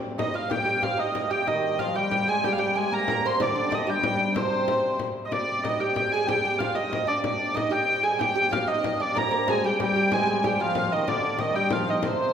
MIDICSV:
0, 0, Header, 1, 6, 480
1, 0, Start_track
1, 0, Key_signature, -3, "minor"
1, 0, Tempo, 320000
1, 765, Time_signature, 6, 3, 24, 8
1, 18495, End_track
2, 0, Start_track
2, 0, Title_t, "Hurdy-gurdy"
2, 0, Program_c, 0, 110
2, 286, Note_on_c, 0, 75, 75
2, 532, Note_off_c, 0, 75, 0
2, 532, Note_on_c, 0, 77, 74
2, 770, Note_off_c, 0, 77, 0
2, 770, Note_on_c, 0, 79, 82
2, 1250, Note_off_c, 0, 79, 0
2, 1250, Note_on_c, 0, 77, 75
2, 1497, Note_off_c, 0, 77, 0
2, 1497, Note_on_c, 0, 75, 83
2, 1962, Note_on_c, 0, 79, 75
2, 1975, Note_off_c, 0, 75, 0
2, 2215, Note_off_c, 0, 79, 0
2, 2215, Note_on_c, 0, 75, 82
2, 2690, Note_off_c, 0, 75, 0
2, 2690, Note_on_c, 0, 77, 78
2, 2936, Note_off_c, 0, 77, 0
2, 2936, Note_on_c, 0, 79, 87
2, 3434, Note_off_c, 0, 79, 0
2, 3434, Note_on_c, 0, 80, 87
2, 3672, Note_off_c, 0, 80, 0
2, 3672, Note_on_c, 0, 79, 86
2, 3793, Note_off_c, 0, 79, 0
2, 3793, Note_on_c, 0, 77, 79
2, 3891, Note_off_c, 0, 77, 0
2, 3891, Note_on_c, 0, 79, 84
2, 4161, Note_off_c, 0, 79, 0
2, 4161, Note_on_c, 0, 80, 87
2, 4411, Note_off_c, 0, 80, 0
2, 4411, Note_on_c, 0, 82, 98
2, 4897, Note_off_c, 0, 82, 0
2, 4897, Note_on_c, 0, 84, 88
2, 5130, Note_off_c, 0, 84, 0
2, 5130, Note_on_c, 0, 74, 87
2, 5620, Note_off_c, 0, 74, 0
2, 5620, Note_on_c, 0, 75, 77
2, 5853, Note_off_c, 0, 75, 0
2, 5853, Note_on_c, 0, 79, 97
2, 6561, Note_off_c, 0, 79, 0
2, 6561, Note_on_c, 0, 72, 75
2, 7454, Note_off_c, 0, 72, 0
2, 7880, Note_on_c, 0, 75, 55
2, 7982, Note_on_c, 0, 74, 78
2, 7984, Note_off_c, 0, 75, 0
2, 8459, Note_on_c, 0, 75, 79
2, 8464, Note_off_c, 0, 74, 0
2, 8703, Note_off_c, 0, 75, 0
2, 8703, Note_on_c, 0, 79, 86
2, 9181, Note_off_c, 0, 79, 0
2, 9181, Note_on_c, 0, 80, 84
2, 9403, Note_on_c, 0, 79, 90
2, 9424, Note_off_c, 0, 80, 0
2, 9880, Note_on_c, 0, 77, 86
2, 9895, Note_off_c, 0, 79, 0
2, 10131, Note_on_c, 0, 75, 88
2, 10133, Note_off_c, 0, 77, 0
2, 10623, Note_off_c, 0, 75, 0
2, 10623, Note_on_c, 0, 74, 80
2, 10852, Note_off_c, 0, 74, 0
2, 10852, Note_on_c, 0, 74, 89
2, 11330, Note_off_c, 0, 74, 0
2, 11330, Note_on_c, 0, 75, 85
2, 11581, Note_off_c, 0, 75, 0
2, 11581, Note_on_c, 0, 79, 97
2, 12055, Note_on_c, 0, 80, 89
2, 12063, Note_off_c, 0, 79, 0
2, 12294, Note_on_c, 0, 79, 98
2, 12300, Note_off_c, 0, 80, 0
2, 12789, Note_off_c, 0, 79, 0
2, 12789, Note_on_c, 0, 77, 86
2, 13021, Note_on_c, 0, 75, 88
2, 13026, Note_off_c, 0, 77, 0
2, 13264, Note_off_c, 0, 75, 0
2, 13264, Note_on_c, 0, 75, 81
2, 13526, Note_off_c, 0, 75, 0
2, 13526, Note_on_c, 0, 74, 83
2, 13769, Note_off_c, 0, 74, 0
2, 13769, Note_on_c, 0, 82, 94
2, 14252, Note_off_c, 0, 82, 0
2, 14252, Note_on_c, 0, 80, 89
2, 14492, Note_off_c, 0, 80, 0
2, 14492, Note_on_c, 0, 79, 92
2, 14725, Note_off_c, 0, 79, 0
2, 14725, Note_on_c, 0, 79, 96
2, 15198, Note_off_c, 0, 79, 0
2, 15198, Note_on_c, 0, 80, 95
2, 15472, Note_off_c, 0, 80, 0
2, 15472, Note_on_c, 0, 80, 85
2, 15699, Note_off_c, 0, 80, 0
2, 15699, Note_on_c, 0, 79, 86
2, 15920, Note_off_c, 0, 79, 0
2, 15920, Note_on_c, 0, 77, 95
2, 16163, Note_off_c, 0, 77, 0
2, 16163, Note_on_c, 0, 77, 87
2, 16388, Note_off_c, 0, 77, 0
2, 16388, Note_on_c, 0, 75, 83
2, 16626, Note_off_c, 0, 75, 0
2, 16626, Note_on_c, 0, 74, 93
2, 17113, Note_off_c, 0, 74, 0
2, 17113, Note_on_c, 0, 75, 87
2, 17336, Note_off_c, 0, 75, 0
2, 17336, Note_on_c, 0, 79, 95
2, 17591, Note_off_c, 0, 79, 0
2, 17591, Note_on_c, 0, 77, 85
2, 17858, Note_off_c, 0, 77, 0
2, 17858, Note_on_c, 0, 75, 80
2, 18084, Note_off_c, 0, 75, 0
2, 18084, Note_on_c, 0, 72, 77
2, 18495, Note_off_c, 0, 72, 0
2, 18495, End_track
3, 0, Start_track
3, 0, Title_t, "Oud"
3, 0, Program_c, 1, 24
3, 276, Note_on_c, 1, 63, 62
3, 503, Note_off_c, 1, 63, 0
3, 509, Note_on_c, 1, 65, 68
3, 739, Note_off_c, 1, 65, 0
3, 745, Note_on_c, 1, 67, 67
3, 962, Note_off_c, 1, 67, 0
3, 980, Note_on_c, 1, 67, 67
3, 1223, Note_off_c, 1, 67, 0
3, 1229, Note_on_c, 1, 65, 67
3, 1458, Note_off_c, 1, 65, 0
3, 1464, Note_on_c, 1, 63, 60
3, 1955, Note_off_c, 1, 63, 0
3, 1961, Note_on_c, 1, 67, 74
3, 2202, Note_off_c, 1, 67, 0
3, 2208, Note_on_c, 1, 63, 65
3, 2690, Note_off_c, 1, 63, 0
3, 2696, Note_on_c, 1, 65, 76
3, 2925, Note_off_c, 1, 65, 0
3, 2931, Note_on_c, 1, 67, 71
3, 3158, Note_off_c, 1, 67, 0
3, 3176, Note_on_c, 1, 67, 67
3, 3414, Note_off_c, 1, 67, 0
3, 3420, Note_on_c, 1, 68, 75
3, 3666, Note_off_c, 1, 68, 0
3, 3680, Note_on_c, 1, 67, 75
3, 3764, Note_off_c, 1, 67, 0
3, 3874, Note_on_c, 1, 67, 75
3, 4126, Note_off_c, 1, 67, 0
3, 4132, Note_on_c, 1, 68, 80
3, 4379, Note_off_c, 1, 68, 0
3, 4385, Note_on_c, 1, 70, 75
3, 4621, Note_off_c, 1, 70, 0
3, 4639, Note_on_c, 1, 70, 79
3, 4877, Note_off_c, 1, 70, 0
3, 4885, Note_on_c, 1, 72, 82
3, 5106, Note_on_c, 1, 62, 79
3, 5120, Note_off_c, 1, 72, 0
3, 5313, Note_off_c, 1, 62, 0
3, 5331, Note_on_c, 1, 62, 76
3, 5555, Note_off_c, 1, 62, 0
3, 5561, Note_on_c, 1, 63, 77
3, 5803, Note_on_c, 1, 67, 77
3, 5820, Note_off_c, 1, 63, 0
3, 6277, Note_on_c, 1, 62, 69
3, 6309, Note_off_c, 1, 67, 0
3, 6516, Note_on_c, 1, 60, 63
3, 6538, Note_off_c, 1, 62, 0
3, 7432, Note_off_c, 1, 60, 0
3, 7971, Note_on_c, 1, 62, 68
3, 8470, Note_off_c, 1, 62, 0
3, 8476, Note_on_c, 1, 63, 68
3, 8710, Note_on_c, 1, 67, 71
3, 8719, Note_off_c, 1, 63, 0
3, 9199, Note_off_c, 1, 67, 0
3, 9205, Note_on_c, 1, 68, 78
3, 9423, Note_off_c, 1, 68, 0
3, 9429, Note_on_c, 1, 67, 78
3, 9659, Note_off_c, 1, 67, 0
3, 9677, Note_on_c, 1, 67, 76
3, 9903, Note_on_c, 1, 65, 76
3, 9919, Note_off_c, 1, 67, 0
3, 10125, Note_off_c, 1, 65, 0
3, 10131, Note_on_c, 1, 63, 71
3, 10598, Note_off_c, 1, 63, 0
3, 10604, Note_on_c, 1, 62, 73
3, 10844, Note_off_c, 1, 62, 0
3, 10862, Note_on_c, 1, 62, 75
3, 11310, Note_off_c, 1, 62, 0
3, 11316, Note_on_c, 1, 63, 78
3, 11561, Note_on_c, 1, 67, 82
3, 11578, Note_off_c, 1, 63, 0
3, 12044, Note_off_c, 1, 67, 0
3, 12050, Note_on_c, 1, 68, 80
3, 12280, Note_off_c, 1, 68, 0
3, 12286, Note_on_c, 1, 67, 76
3, 12513, Note_off_c, 1, 67, 0
3, 12531, Note_on_c, 1, 67, 79
3, 12765, Note_on_c, 1, 65, 78
3, 12785, Note_off_c, 1, 67, 0
3, 13005, Note_off_c, 1, 65, 0
3, 13011, Note_on_c, 1, 63, 72
3, 13494, Note_off_c, 1, 63, 0
3, 13500, Note_on_c, 1, 62, 78
3, 13726, Note_on_c, 1, 70, 80
3, 13748, Note_off_c, 1, 62, 0
3, 13919, Note_off_c, 1, 70, 0
3, 13926, Note_on_c, 1, 72, 62
3, 13966, Note_on_c, 1, 70, 83
3, 13984, Note_off_c, 1, 72, 0
3, 14196, Note_off_c, 1, 70, 0
3, 14234, Note_on_c, 1, 68, 81
3, 14451, Note_off_c, 1, 68, 0
3, 14463, Note_on_c, 1, 67, 78
3, 14681, Note_off_c, 1, 67, 0
3, 14699, Note_on_c, 1, 67, 74
3, 14918, Note_off_c, 1, 67, 0
3, 14936, Note_on_c, 1, 67, 79
3, 15170, Note_off_c, 1, 67, 0
3, 15176, Note_on_c, 1, 68, 80
3, 15388, Note_off_c, 1, 68, 0
3, 15406, Note_on_c, 1, 68, 78
3, 15658, Note_off_c, 1, 68, 0
3, 15664, Note_on_c, 1, 67, 80
3, 15894, Note_off_c, 1, 67, 0
3, 15900, Note_on_c, 1, 65, 76
3, 16106, Note_off_c, 1, 65, 0
3, 16124, Note_on_c, 1, 65, 74
3, 16376, Note_off_c, 1, 65, 0
3, 16391, Note_on_c, 1, 63, 80
3, 16615, Note_on_c, 1, 62, 71
3, 16629, Note_off_c, 1, 63, 0
3, 17281, Note_off_c, 1, 62, 0
3, 17338, Note_on_c, 1, 67, 74
3, 17580, Note_off_c, 1, 67, 0
3, 17586, Note_on_c, 1, 65, 70
3, 17822, Note_off_c, 1, 65, 0
3, 17828, Note_on_c, 1, 63, 73
3, 18054, Note_off_c, 1, 63, 0
3, 18060, Note_on_c, 1, 60, 65
3, 18495, Note_off_c, 1, 60, 0
3, 18495, End_track
4, 0, Start_track
4, 0, Title_t, "Bass clarinet"
4, 0, Program_c, 2, 71
4, 2219, Note_on_c, 2, 51, 70
4, 2663, Note_off_c, 2, 51, 0
4, 2698, Note_on_c, 2, 53, 67
4, 2930, Note_on_c, 2, 55, 71
4, 2952, Note_off_c, 2, 53, 0
4, 3414, Note_off_c, 2, 55, 0
4, 3435, Note_on_c, 2, 56, 74
4, 3668, Note_on_c, 2, 55, 81
4, 3690, Note_off_c, 2, 56, 0
4, 3764, Note_off_c, 2, 55, 0
4, 3868, Note_on_c, 2, 55, 70
4, 4123, Note_off_c, 2, 55, 0
4, 4139, Note_on_c, 2, 56, 76
4, 4346, Note_off_c, 2, 56, 0
4, 4355, Note_on_c, 2, 58, 87
4, 5038, Note_off_c, 2, 58, 0
4, 5097, Note_on_c, 2, 50, 74
4, 5201, Note_on_c, 2, 51, 60
4, 5223, Note_off_c, 2, 50, 0
4, 5282, Note_on_c, 2, 50, 78
4, 5305, Note_off_c, 2, 51, 0
4, 5811, Note_off_c, 2, 50, 0
4, 5827, Note_on_c, 2, 55, 72
4, 5936, Note_on_c, 2, 56, 65
4, 5959, Note_off_c, 2, 55, 0
4, 6029, Note_on_c, 2, 55, 79
4, 6052, Note_off_c, 2, 56, 0
4, 6546, Note_off_c, 2, 55, 0
4, 6573, Note_on_c, 2, 48, 70
4, 7460, Note_off_c, 2, 48, 0
4, 13741, Note_on_c, 2, 58, 86
4, 14217, Note_on_c, 2, 56, 78
4, 14239, Note_off_c, 2, 58, 0
4, 14448, Note_off_c, 2, 56, 0
4, 14457, Note_on_c, 2, 55, 82
4, 14566, Note_off_c, 2, 55, 0
4, 14725, Note_on_c, 2, 55, 78
4, 15191, Note_on_c, 2, 56, 88
4, 15213, Note_off_c, 2, 55, 0
4, 15424, Note_off_c, 2, 56, 0
4, 15445, Note_on_c, 2, 56, 78
4, 15546, Note_off_c, 2, 56, 0
4, 15653, Note_on_c, 2, 55, 77
4, 15877, Note_off_c, 2, 55, 0
4, 15912, Note_on_c, 2, 53, 82
4, 16127, Note_off_c, 2, 53, 0
4, 16151, Note_on_c, 2, 53, 72
4, 16402, Note_on_c, 2, 51, 73
4, 16424, Note_off_c, 2, 53, 0
4, 16600, Note_off_c, 2, 51, 0
4, 16609, Note_on_c, 2, 50, 82
4, 17084, Note_on_c, 2, 51, 72
4, 17107, Note_off_c, 2, 50, 0
4, 17305, Note_on_c, 2, 55, 78
4, 17327, Note_off_c, 2, 51, 0
4, 17556, Note_off_c, 2, 55, 0
4, 17564, Note_on_c, 2, 53, 77
4, 18010, Note_off_c, 2, 53, 0
4, 18041, Note_on_c, 2, 48, 68
4, 18495, Note_off_c, 2, 48, 0
4, 18495, End_track
5, 0, Start_track
5, 0, Title_t, "Harmonium"
5, 0, Program_c, 3, 20
5, 0, Note_on_c, 3, 48, 60
5, 0, Note_on_c, 3, 55, 53
5, 2191, Note_off_c, 3, 48, 0
5, 2198, Note_off_c, 3, 55, 0
5, 2214, Note_on_c, 3, 48, 55
5, 2220, Note_on_c, 3, 55, 55
5, 7953, Note_off_c, 3, 55, 0
5, 7960, Note_off_c, 3, 48, 0
5, 7976, Note_on_c, 3, 55, 53
5, 7983, Note_on_c, 3, 48, 56
5, 13723, Note_off_c, 3, 55, 0
5, 13732, Note_off_c, 3, 48, 0
5, 13746, Note_on_c, 3, 55, 56
5, 13754, Note_on_c, 3, 48, 62
5, 18495, Note_off_c, 3, 48, 0
5, 18495, Note_off_c, 3, 55, 0
5, 18495, End_track
6, 0, Start_track
6, 0, Title_t, "Frame drum"
6, 285, Note_on_c, 9, 64, 88
6, 435, Note_off_c, 9, 64, 0
6, 766, Note_on_c, 9, 64, 80
6, 916, Note_off_c, 9, 64, 0
6, 1241, Note_on_c, 9, 64, 76
6, 1391, Note_off_c, 9, 64, 0
6, 1480, Note_on_c, 9, 64, 23
6, 1630, Note_off_c, 9, 64, 0
6, 1723, Note_on_c, 9, 64, 70
6, 1873, Note_off_c, 9, 64, 0
6, 2213, Note_on_c, 9, 64, 64
6, 2363, Note_off_c, 9, 64, 0
6, 2686, Note_on_c, 9, 64, 68
6, 2836, Note_off_c, 9, 64, 0
6, 3169, Note_on_c, 9, 64, 70
6, 3319, Note_off_c, 9, 64, 0
6, 3659, Note_on_c, 9, 64, 67
6, 3809, Note_off_c, 9, 64, 0
6, 4617, Note_on_c, 9, 64, 80
6, 4767, Note_off_c, 9, 64, 0
6, 5100, Note_on_c, 9, 64, 83
6, 5250, Note_off_c, 9, 64, 0
6, 5579, Note_on_c, 9, 64, 82
6, 5729, Note_off_c, 9, 64, 0
6, 6052, Note_on_c, 9, 64, 84
6, 6202, Note_off_c, 9, 64, 0
6, 6536, Note_on_c, 9, 64, 81
6, 6686, Note_off_c, 9, 64, 0
6, 7018, Note_on_c, 9, 64, 75
6, 7168, Note_off_c, 9, 64, 0
6, 7491, Note_on_c, 9, 64, 76
6, 7641, Note_off_c, 9, 64, 0
6, 7979, Note_on_c, 9, 64, 74
6, 8129, Note_off_c, 9, 64, 0
6, 8469, Note_on_c, 9, 64, 74
6, 8619, Note_off_c, 9, 64, 0
6, 8940, Note_on_c, 9, 64, 79
6, 9090, Note_off_c, 9, 64, 0
6, 9426, Note_on_c, 9, 64, 77
6, 9576, Note_off_c, 9, 64, 0
6, 9904, Note_on_c, 9, 64, 75
6, 10054, Note_off_c, 9, 64, 0
6, 10390, Note_on_c, 9, 64, 76
6, 10540, Note_off_c, 9, 64, 0
6, 10857, Note_on_c, 9, 64, 72
6, 11007, Note_off_c, 9, 64, 0
6, 11352, Note_on_c, 9, 64, 78
6, 11502, Note_off_c, 9, 64, 0
6, 12312, Note_on_c, 9, 64, 78
6, 12462, Note_off_c, 9, 64, 0
6, 12554, Note_on_c, 9, 64, 24
6, 12704, Note_off_c, 9, 64, 0
6, 12792, Note_on_c, 9, 64, 84
6, 12942, Note_off_c, 9, 64, 0
6, 13263, Note_on_c, 9, 64, 79
6, 13413, Note_off_c, 9, 64, 0
6, 13749, Note_on_c, 9, 64, 75
6, 13899, Note_off_c, 9, 64, 0
6, 14216, Note_on_c, 9, 64, 83
6, 14366, Note_off_c, 9, 64, 0
6, 14697, Note_on_c, 9, 64, 80
6, 14847, Note_off_c, 9, 64, 0
6, 15174, Note_on_c, 9, 64, 81
6, 15324, Note_off_c, 9, 64, 0
6, 15660, Note_on_c, 9, 64, 79
6, 15810, Note_off_c, 9, 64, 0
6, 16128, Note_on_c, 9, 64, 80
6, 16278, Note_off_c, 9, 64, 0
6, 16615, Note_on_c, 9, 64, 74
6, 16765, Note_off_c, 9, 64, 0
6, 17077, Note_on_c, 9, 64, 78
6, 17227, Note_off_c, 9, 64, 0
6, 17556, Note_on_c, 9, 64, 85
6, 17706, Note_off_c, 9, 64, 0
6, 18038, Note_on_c, 9, 64, 84
6, 18188, Note_off_c, 9, 64, 0
6, 18284, Note_on_c, 9, 64, 28
6, 18434, Note_off_c, 9, 64, 0
6, 18495, End_track
0, 0, End_of_file